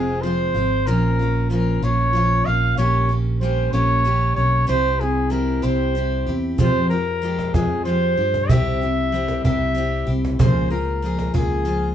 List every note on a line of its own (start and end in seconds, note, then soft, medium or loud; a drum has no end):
0.00 0.52 F1 medium
0.00 0.25 F2 soft
0.00 0.25 C3 soft
0.00 0.22 F3 soft
0.00 0.24 G#3 medium
0.00 0.24 C4 medium
0.00 0.23 F4 soft
0.00 0.23 G#4 medium
0.21 0.55 F3 medium
0.21 0.56 G#3 soft
0.21 0.88 C5 medium
0.26 0.55 C4 soft
0.26 0.53 F4 medium
0.54 0.85 G#1 medium
0.54 0.86 F3 soft
0.54 0.88 G#3 soft
0.54 0.88 C4 soft
0.54 0.87 F4 soft
0.86 1.79 A#1 medium
0.86 1.19 A#2 medium
0.86 1.19 F3 medium
0.86 1.19 A#3 medium
0.86 1.20 C#4 medium
0.86 1.18 F4 medium
0.86 1.50 A#4 medium
1.19 1.50 A#3 soft
1.19 1.51 C#4 soft
1.19 1.51 F4 soft
1.50 1.82 F3 soft
1.50 1.83 A#3 soft
1.50 1.82 C#4 soft
1.50 1.81 F4 medium
1.50 1.85 A#4 medium
1.82 2.43 A#1 medium
1.82 2.16 A#2 soft
1.82 2.12 F3 soft
1.82 2.14 A#3 soft
1.82 2.14 C#4 soft
1.82 2.14 F4 medium
1.82 2.47 C#5 medium
2.13 2.46 F3 soft
2.13 2.47 A#3 medium
2.13 2.46 C#4 soft
2.13 2.44 F4 medium
2.45 2.77 A#1 medium
2.45 2.78 A#3 soft
2.45 2.78 C#4 soft
2.45 2.78 F4 soft
2.45 2.77 F5 medium
2.77 3.69 A#1 medium
2.77 3.10 A#2 medium
2.77 3.10 G3 medium
2.77 3.10 A#3 medium
2.77 3.10 C#4 medium
2.77 3.08 G4 medium
2.77 3.12 C#5 medium
3.09 3.41 A#3 soft
3.09 3.42 C#4 soft
3.09 3.41 G4 soft
3.41 3.73 G3 soft
3.41 3.72 A#3 medium
3.41 3.72 C#4 medium
3.41 3.72 G4 soft
3.41 3.71 C5 medium
3.73 4.34 A#1 medium
3.73 4.06 A#2 soft
3.73 4.03 G3 medium
3.73 4.04 A#3 soft
3.73 4.05 C#4 medium
3.73 4.05 G4 medium
3.73 4.33 C#5 medium
4.05 4.37 G3 soft
4.05 4.37 A#3 soft
4.05 4.36 C#4 soft
4.05 4.35 G4 medium
4.35 4.67 B1 medium
4.35 4.68 A#3 soft
4.35 4.68 C#4 soft
4.35 4.68 G4 soft
4.35 4.66 C#5 medium
4.67 5.60 C2 medium
4.67 5.00 C3 medium
4.67 5.00 G3 medium
4.67 5.00 C4 medium
4.67 5.00 E4 medium
4.67 5.01 G4 medium
4.67 5.01 C5 medium
5.00 5.30 C4 soft
5.00 5.31 E4 soft
5.00 5.32 G#4 medium
5.30 5.63 G3 soft
5.30 5.62 C4 soft
5.30 5.62 E4 medium
5.30 5.61 G4 soft
5.30 5.65 A#4 medium
5.62 6.24 C2 medium
5.62 5.96 C3 soft
5.62 5.94 G3 soft
5.62 5.95 C4 soft
5.62 5.95 E4 medium
5.62 5.95 G4 medium
5.62 6.35 C5 medium
5.95 6.27 G3 soft
5.95 6.28 C4 soft
5.95 6.27 E4 soft
5.95 6.25 G4 medium
6.26 6.58 E2 medium
6.26 6.60 C4 soft
6.26 6.59 E4 soft
6.26 6.59 G4 soft
6.58 6.90 F2 medium
6.58 7.50 F2 medium
6.58 6.91 C3 medium
6.58 6.91 F3 medium
6.58 6.91 G#3 medium
6.58 6.90 F4 medium
6.58 6.89 G4 medium
6.58 6.89 C5 medium
6.58 cajon bass medium
6.89 7.20 F3 soft
6.89 7.22 G#3 soft
6.89 7.23 F4 soft
6.89 7.22 G4 soft
6.89 7.56 A#4 medium
7.07 cajon slap soft
7.22 7.54 F3 soft
7.22 7.54 G#3 medium
7.22 7.54 F4 soft
7.22 7.55 G4 soft
7.22 cajon slap soft
7.39 cajon slap medium
7.54 8.14 F2 medium
7.54 7.87 F2 soft
7.54 7.87 C3 soft
7.54 7.84 F3 soft
7.54 7.86 G#3 soft
7.54 7.86 F4 soft
7.54 7.84 G#4 medium
7.54 cajon bass medium
7.54 cajon slap soft
7.84 8.17 F3 soft
7.84 8.18 G#3 medium
7.84 8.17 F4 medium
7.84 8.51 C5 medium
7.84 cajon slap soft
7.89 8.16 G4 medium
8.18 8.48 G2 medium
8.18 8.50 F3 soft
8.18 8.50 F4 soft
8.18 8.49 G4 soft
8.34 cajon slap medium
8.49 9.40 C2 medium
8.49 8.81 C3 medium
8.49 8.81 G3 medium
8.49 8.82 C4 medium
8.49 8.82 E4 medium
8.49 8.80 G4 medium
8.49 9.44 E5 medium
8.49 cajon bass medium
8.81 9.13 C4 soft
8.81 9.14 E4 soft
8.81 9.13 G4 soft
8.97 cajon slap soft
9.12 9.44 G3 medium
9.12 9.44 C4 soft
9.12 9.44 E4 medium
9.12 9.43 G4 medium
9.12 cajon slap soft
9.28 cajon slap medium
9.44 10.04 C2 medium
9.44 9.77 C3 soft
9.44 9.73 G3 soft
9.44 9.75 C4 soft
9.44 9.76 E4 soft
9.44 9.76 G4 medium
9.44 10.12 E5 medium
9.44 cajon bass medium
9.44 cajon slap soft
9.75 10.07 G3 soft
9.75 10.08 C4 soft
9.75 10.07 E4 soft
9.75 10.05 G4 medium
10.07 10.37 C2 medium
10.07 10.40 C4 soft
10.07 10.39 E4 soft
10.07 10.39 G4 soft
10.25 cajon slap medium
10.39 11.30 C#2 medium
10.39 10.71 C#3 medium
10.39 10.71 F3 medium
10.39 10.71 A#3 medium
10.39 10.70 F4 medium
10.39 10.69 G#4 medium
10.39 10.69 C5 medium
10.39 cajon bass medium
10.70 11.03 A#3 soft
10.70 11.03 F4 soft
10.70 11.02 G#4 soft
10.70 11.30 A#4 medium
10.88 cajon slap soft
11.02 11.34 F3 soft
11.02 11.34 A#3 soft
11.02 11.33 F4 medium
11.02 11.33 G#4 medium
11.19 cajon slap medium
11.34 11.94 C#2 medium
11.34 11.66 C#3 soft
11.34 11.64 F3 soft
11.34 11.65 A#3 soft
11.34 11.65 F4 soft
11.34 11.65 G#4 medium
11.34 11.93 G#4 medium
11.34 cajon bass medium
11.34 cajon slap soft
11.65 11.95 F3 medium
11.65 11.95 A#3 medium
11.65 11.95 F4 medium
11.65 11.95 G#4 medium